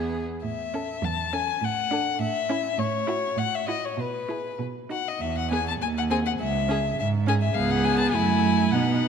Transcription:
Already playing: cello E2, viola B3, violin G#4
0.43 cello A2, violin E5
0.74 viola C#4, violin A4
1.02 cello E2, violin A5
1.33 viola C#4, violin A4 G#5
1.61 cello A2, violin F#5
1.91 viola D4, violin A4
2.19 cello A2, violin E5
2.50 viola C#4, violin E4
2.77 cello A2, violin C#5
3.07 viola E4, violin F#4
3.36 cello A2, violin F#5
3.55 violin E5
3.68 viola E4, violin F#4 D#5
3.85 violin C#5
3.97 cello B2, violin B4
4.29 viola E4, violin G#4
4.59 cello B2
4.90 viola D#4, violin F#4 F#5
5.08 violin D#5
5.21 cello E2, violin E5
5.38 violin F#5
5.51 viola B3, violin G#4 G#5
5.68 violin A5
5.80 cello D#2, violin G#5
5.98 violin F#5
6.10 viola C4, violin G#4 G#5
6.26 violin F#5
6.39 cello C#2, violin E5
6.68 viola C#4, violin G#4
6.98 cello G#2, violin E5
7.27 viola C#4, violin G#4 G#5
7.42 violin E5
7.54 cello C#2, viola B3, violin G#4 F5
7.70 violin F#5
7.84 violin G#5
7.99 violin A5
8.12 cello F#2, viola A3, violin E4 G#5
8.71 cello B2, viola B3, violin D#4 F#5

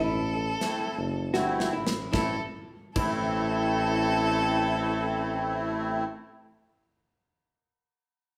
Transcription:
Already playing: tuba A1, hollow-body jazz guitar E4, violin A4
0.60 accordion A3 C4 E4, snare, closed hi-hat
0.97 tuba F#1
1.33 tuba G1, accordion A3 C4 E4, hollow-body jazz guitar F#4, snare
1.60 snare
1.73 tuba A1, hollow-body jazz guitar E4
1.87 snare
2.12 tuba A1, accordion A3 C4 E4, hollow-body jazz guitar E4, violin A4, kick, snare
2.94 tuba A1, accordion A3 C4 E4, hollow-body jazz guitar E4, violin A4, kick, crash

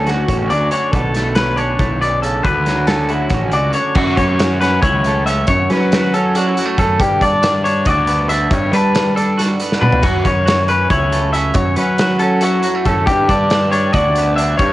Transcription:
Already playing: picked electric bass D2, clean electric guitar D2 D3 F#3 C#4
0.06 clean electric guitar F#4, snare, closed hi-hat
0.28 picked electric bass A1, clean electric guitar C#4, kick, closed hi-hat
0.50 picked electric bass D2, clean electric guitar F#3 D5, closed hi-hat
0.71 clean electric guitar D3 C#5, closed hi-hat
0.92 picked electric bass B1, clean electric guitar B2 A4, kick, closed hi-hat
1.14 clean electric guitar A3, snare, closed hi-hat
1.35 clean electric guitar C#4 B4, snare, closed hi-hat
1.56 clean electric guitar D4 C#5, closed hi-hat
1.79 picked electric bass B1, clean electric guitar A2, kick, closed hi-hat
2.01 clean electric guitar B2 D5, closed hi-hat
2.22 clean electric guitar C#3 A4, closed hi-hat
2.43 clean electric guitar D2 B4, picked electric bass D2, kick, closed hi-hat
2.66 clean electric guitar F#3, snare, closed hi-hat
2.87 clean electric guitar C#4 A4, snare, closed hi-hat
3.09 clean electric guitar E4 F#4, closed hi-hat
3.30 picked electric bass A1, kick, snare, closed hi-hat
3.34 clean electric guitar C#4
3.52 picked electric bass C#2, clean electric guitar F#3 D5, closed hi-hat
3.73 clean electric guitar D3 C#5, closed hi-hat
3.95 picked electric bass F#2, clean electric guitar F#2 F#4, kick, crash
4.16 picked electric bass F#2, clean electric guitar C#4 C#5, kick, closed hi-hat
4.39 clean electric guitar F#4, snare, closed hi-hat
4.61 clean electric guitar C#4 B4, snare, closed hi-hat
4.82 picked electric bass C#2, clean electric guitar E4 C#5, kick, closed hi-hat
5.04 clean electric guitar A3, closed hi-hat
5.26 clean electric guitar C#4 E5, closed hi-hat
5.47 clean electric guitar F#2 C#5, picked electric bass F#2, kick, closed hi-hat
5.70 picked electric bass F#3, clean electric guitar C#4 B4, snare, closed hi-hat
5.92 clean electric guitar F#4, snare, closed hi-hat
6.14 clean electric guitar C#4 A4, closed hi-hat
6.35 clean electric guitar D4 F#4, closed hi-hat
6.46 clean electric guitar E4
6.57 clean electric guitar F#3, closed hi-hat
6.65 clean electric guitar A3
6.78 picked electric bass F#2, clean electric guitar C#4 A4, kick, closed hi-hat
7.00 clean electric guitar G2 G4, picked electric bass G2, kick, closed hi-hat
7.21 picked electric bass G2, clean electric guitar D4 D5, kick, closed hi-hat
7.42 clean electric guitar D4, snare, closed hi-hat
7.64 clean electric guitar D4 C#5, closed hi-hat
7.85 picked electric bass D2, clean electric guitar F#4 D5, kick, closed hi-hat
8.07 clean electric guitar B3, closed hi-hat
8.29 clean electric guitar D4 E5, closed hi-hat
8.51 picked electric bass G2, clean electric guitar G2 C#5, kick, closed hi-hat
8.73 picked electric bass G3, clean electric guitar D4 B4, closed hi-hat
8.93 clean electric guitar D4, snare, closed hi-hat
9.16 clean electric guitar D4 A4, closed hi-hat
9.38 clean electric guitar F#4, snare, closed hi-hat
9.60 clean electric guitar B3, closed hi-hat
9.72 snare
9.81 picked electric bass B2, clean electric guitar D4 B4, mid tom
9.92 floor tom
10.02 clean electric guitar F#2 F#4, picked electric bass F#2, kick, closed hi-hat, crash
10.25 picked electric bass F#2, clean electric guitar C#4 C#5, kick, closed hi-hat
10.46 clean electric guitar F#4, snare, closed hi-hat
10.68 clean electric guitar C#4 B4, closed hi-hat
10.90 picked electric bass C#2, clean electric guitar E4 C#5, kick, closed hi-hat
11.12 clean electric guitar A3, closed hi-hat
11.33 clean electric guitar C#4 E5, closed hi-hat
11.54 clean electric guitar F#2 C#5, picked electric bass F#2, kick, closed hi-hat
11.76 picked electric bass F#3, clean electric guitar C#4 B4, closed hi-hat
11.98 clean electric guitar F#4, snare, closed hi-hat
12.19 clean electric guitar C#4 A4, closed hi-hat
12.41 clean electric guitar E4 F#4, closed hi-hat
12.62 clean electric guitar F#3, closed hi-hat
12.75 clean electric guitar A3
12.85 picked electric bass F#2, clean electric guitar C#4 A4, kick, closed hi-hat
13.06 picked electric bass G2, clean electric guitar G2 G4, kick, closed hi-hat
13.28 picked electric bass G2, clean electric guitar D4 D5, kick, closed hi-hat
13.50 clean electric guitar D4, snare, closed hi-hat
13.72 clean electric guitar D4 C#5, closed hi-hat
13.93 picked electric bass D2, clean electric guitar F#4 D5, kick, closed hi-hat
14.15 clean electric guitar B3, closed hi-hat
14.36 clean electric guitar D4 E5, closed hi-hat
14.58 picked electric bass G2, clean electric guitar G2 C#5, kick, closed hi-hat

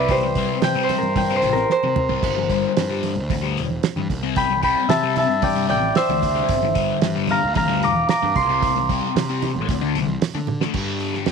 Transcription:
Already playing: picked electric bass C2, distorted electric guitar C3 G3 C4, harp B4 D5 E5 G5
0.08 harp G4 C5, kick, open hi-hat, low conga
0.23 muted distorted electric guitar stroke
0.35 distorted electric guitar C3 G3 C4, kick, open hi-hat
0.62 picked electric bass C3, harp G5, muted distorted electric guitar stroke, snare, open hi-hat
0.75 distorted electric guitar C3 G3 C4
0.83 harp C5
0.89 open hi-hat, high conga, low conga
0.98 harp A#4
1.02 picked electric bass G2, high conga
1.16 harp G5, muted distorted electric guitar stroke, kick, open hi-hat, high conga, low conga
1.30 distorted electric guitar C3 G3 C4
1.36 harp C5
1.42 picked electric bass A1, open hi-hat
1.53 harp A#4, snare, high conga
1.70 harp C5, snare
1.83 picked electric bass C3, muted distorted electric guitar stroke, high conga
1.96 mid tom, low conga
2.09 distorted electric guitar C3 G3 C4, floor tom
2.23 picked electric bass G1, kick, crash
2.37 muted distorted electric guitar stroke
2.50 distorted electric guitar G2 D3 G3, kick, open hi-hat
2.77 picked electric bass G2, muted distorted electric guitar stroke, snare, open hi-hat
2.90 distorted electric guitar G2 D3 G3
3.03 open hi-hat, high conga
3.17 picked electric bass D2
3.30 muted distorted electric guitar stroke, kick, open hi-hat, high conga
3.42 distorted electric guitar G2 D3 G3
3.57 picked electric bass E1, open hi-hat
3.70 high conga
3.83 snare, open hi-hat
3.96 picked electric bass G2, muted distorted electric guitar stroke, high conga
4.10 picked electric bass C2, kick, open hi-hat, low conga
4.23 distorted electric guitar C3 G3 C4
4.36 harp G5 B5, kick, open hi-hat
4.50 muted distorted electric guitar stroke
4.62 distorted electric guitar C3 G3 C4, harp G5 B5, kick, open hi-hat
4.89 picked electric bass C3, harp E5 A5, muted distorted electric guitar stroke, snare, open hi-hat
5.03 distorted electric guitar C3 G3 C4
5.16 harp E5 A5, open hi-hat, high conga, low conga
5.28 picked electric bass G2
5.42 harp D5 G5, muted distorted electric guitar stroke, kick, open hi-hat, high conga
5.55 distorted electric guitar C3 G3 C4
5.69 picked electric bass A1, harp D5 G5, open hi-hat
5.83 high conga
5.95 harp C5 E5, snare, open hi-hat
6.09 picked electric bass D2, muted distorted electric guitar stroke, high conga
6.22 kick, open hi-hat, low conga
6.35 distorted electric guitar C3 G3 C4
6.49 picked electric bass G1, kick, open hi-hat
6.62 muted distorted electric guitar stroke
6.75 distorted electric guitar G2 D3 G3, kick, open hi-hat
7.02 picked electric bass G2, muted distorted electric guitar stroke, snare, open hi-hat
7.16 distorted electric guitar G2 D3 G3
7.28 harp F5 A#5, open hi-hat, high conga, low conga
7.44 picked electric bass D2
7.55 harp F5 A#5, muted distorted electric guitar stroke, kick, open hi-hat, high conga
7.68 distorted electric guitar G2 D3 G3
7.83 picked electric bass E1, harp A#5 D6, open hi-hat
7.96 high conga
8.09 harp A#5 D6, snare, open hi-hat
8.22 picked electric bass G2, muted distorted electric guitar stroke, high conga
8.36 picked electric bass C2, harp C6, kick, open hi-hat, low conga
8.49 distorted electric guitar C3 G3 C4
8.62 kick, open hi-hat
8.76 muted distorted electric guitar stroke
8.89 distorted electric guitar C3 G3 C4, kick, open hi-hat
9.16 picked electric bass C3, muted distorted electric guitar stroke, snare, open hi-hat
9.29 distorted electric guitar C3 G3 C4
9.42 open hi-hat, high conga, low conga
9.56 picked electric bass A1, high conga
9.68 picked electric bass D2, muted distorted electric guitar stroke, kick, open hi-hat
9.81 distorted electric guitar D3 A3 D4
9.95 picked electric bass C2, open hi-hat
10.09 high conga
10.22 snare, open hi-hat
10.35 picked electric bass D3, muted distorted electric guitar stroke
10.47 high tom, low conga
10.61 distorted electric guitar D3 A3 D4, snare
10.74 picked electric bass G2, distorted electric guitar G2 D3, kick, crash
10.79 distorted electric guitar G3
11.00 open hi-hat
11.14 distorted electric guitar D3 G3, snare
11.26 picked electric bass E2, distorted electric guitar G2, snare, open hi-hat

